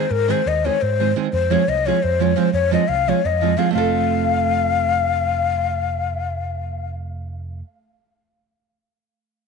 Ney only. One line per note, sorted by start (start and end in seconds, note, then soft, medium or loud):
0.00 0.13 C5 medium
0.11 0.32 A#4 loud
0.31 0.49 C5 loud
0.48 0.67 D#5 loud
0.65 0.83 C#5 loud
0.81 1.10 C5 loud
1.33 1.53 C5 loud
1.51 1.70 C#5 loud
1.69 1.88 D#5 loud
1.86 2.04 C#5 loud
2.03 2.23 C5 loud
2.22 2.39 C#5 medium
2.38 2.53 C5 medium
2.53 2.71 C#5 loud
2.73 2.90 D#5 medium
2.88 3.10 F5 loud
3.09 3.27 C#5 medium
3.26 3.60 D#5 medium
3.58 3.73 F5 medium
3.73 6.90 F5 loud